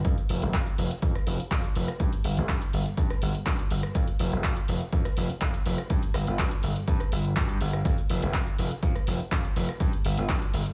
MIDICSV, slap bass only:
0, 0, Header, 1, 3, 480
1, 0, Start_track
1, 0, Tempo, 487805
1, 49, Time_signature, 4, 2, 24, 8
1, 10559, End_track
2, 0, Start_track
2, 0, Title_t, "Slap bass"
2, 0, Program_c, 0, 36
2, 49, Note_on_c, 0, 41, 96
2, 154, Note_off_c, 0, 41, 0
2, 290, Note_on_c, 0, 29, 74
2, 395, Note_off_c, 0, 29, 0
2, 415, Note_on_c, 0, 29, 82
2, 511, Note_off_c, 0, 29, 0
2, 767, Note_on_c, 0, 29, 82
2, 874, Note_off_c, 0, 29, 0
2, 1007, Note_on_c, 0, 41, 78
2, 1114, Note_off_c, 0, 41, 0
2, 1245, Note_on_c, 0, 29, 81
2, 1353, Note_off_c, 0, 29, 0
2, 1487, Note_on_c, 0, 41, 85
2, 1593, Note_off_c, 0, 41, 0
2, 1730, Note_on_c, 0, 29, 86
2, 1835, Note_off_c, 0, 29, 0
2, 1967, Note_on_c, 0, 43, 97
2, 2074, Note_off_c, 0, 43, 0
2, 2206, Note_on_c, 0, 31, 77
2, 2313, Note_off_c, 0, 31, 0
2, 2337, Note_on_c, 0, 31, 87
2, 2432, Note_off_c, 0, 31, 0
2, 2448, Note_on_c, 0, 43, 86
2, 2554, Note_off_c, 0, 43, 0
2, 2690, Note_on_c, 0, 31, 79
2, 2795, Note_off_c, 0, 31, 0
2, 2927, Note_on_c, 0, 43, 81
2, 3034, Note_off_c, 0, 43, 0
2, 3170, Note_on_c, 0, 31, 83
2, 3275, Note_off_c, 0, 31, 0
2, 3406, Note_on_c, 0, 43, 86
2, 3513, Note_off_c, 0, 43, 0
2, 3648, Note_on_c, 0, 31, 91
2, 3754, Note_off_c, 0, 31, 0
2, 3887, Note_on_c, 0, 41, 99
2, 3994, Note_off_c, 0, 41, 0
2, 4126, Note_on_c, 0, 29, 73
2, 4233, Note_off_c, 0, 29, 0
2, 4252, Note_on_c, 0, 29, 85
2, 4349, Note_off_c, 0, 29, 0
2, 4609, Note_on_c, 0, 29, 82
2, 4715, Note_off_c, 0, 29, 0
2, 4847, Note_on_c, 0, 41, 77
2, 4954, Note_off_c, 0, 41, 0
2, 5087, Note_on_c, 0, 29, 84
2, 5194, Note_off_c, 0, 29, 0
2, 5327, Note_on_c, 0, 41, 88
2, 5433, Note_off_c, 0, 41, 0
2, 5565, Note_on_c, 0, 29, 91
2, 5673, Note_off_c, 0, 29, 0
2, 5807, Note_on_c, 0, 43, 95
2, 5914, Note_off_c, 0, 43, 0
2, 6045, Note_on_c, 0, 31, 75
2, 6153, Note_off_c, 0, 31, 0
2, 6169, Note_on_c, 0, 31, 85
2, 6268, Note_off_c, 0, 31, 0
2, 6287, Note_on_c, 0, 43, 90
2, 6394, Note_off_c, 0, 43, 0
2, 6525, Note_on_c, 0, 31, 82
2, 6633, Note_off_c, 0, 31, 0
2, 6768, Note_on_c, 0, 43, 90
2, 6874, Note_off_c, 0, 43, 0
2, 7006, Note_on_c, 0, 31, 78
2, 7211, Note_off_c, 0, 31, 0
2, 7248, Note_on_c, 0, 43, 97
2, 7452, Note_off_c, 0, 43, 0
2, 7486, Note_on_c, 0, 31, 89
2, 7691, Note_off_c, 0, 31, 0
2, 7726, Note_on_c, 0, 41, 99
2, 7833, Note_off_c, 0, 41, 0
2, 7966, Note_on_c, 0, 29, 76
2, 8073, Note_off_c, 0, 29, 0
2, 8091, Note_on_c, 0, 29, 88
2, 8189, Note_off_c, 0, 29, 0
2, 8448, Note_on_c, 0, 29, 83
2, 8554, Note_off_c, 0, 29, 0
2, 8686, Note_on_c, 0, 41, 80
2, 8793, Note_off_c, 0, 41, 0
2, 8928, Note_on_c, 0, 29, 81
2, 9034, Note_off_c, 0, 29, 0
2, 9167, Note_on_c, 0, 41, 89
2, 9274, Note_off_c, 0, 41, 0
2, 9407, Note_on_c, 0, 29, 89
2, 9513, Note_off_c, 0, 29, 0
2, 9646, Note_on_c, 0, 43, 95
2, 9753, Note_off_c, 0, 43, 0
2, 9889, Note_on_c, 0, 31, 76
2, 9995, Note_off_c, 0, 31, 0
2, 10013, Note_on_c, 0, 31, 88
2, 10110, Note_off_c, 0, 31, 0
2, 10126, Note_on_c, 0, 43, 87
2, 10233, Note_off_c, 0, 43, 0
2, 10366, Note_on_c, 0, 31, 85
2, 10473, Note_off_c, 0, 31, 0
2, 10559, End_track
3, 0, Start_track
3, 0, Title_t, "Muted slap bass strokes"
3, 1373, Note_on_c, 9, 29, 41
3, 1471, Note_off_c, 9, 29, 0
3, 3297, Note_on_c, 9, 29, 42
3, 3395, Note_off_c, 9, 29, 0
3, 5214, Note_on_c, 9, 29, 42
3, 5312, Note_off_c, 9, 29, 0
3, 9055, Note_on_c, 9, 29, 43
3, 9154, Note_off_c, 9, 29, 0
3, 10559, End_track
0, 0, End_of_file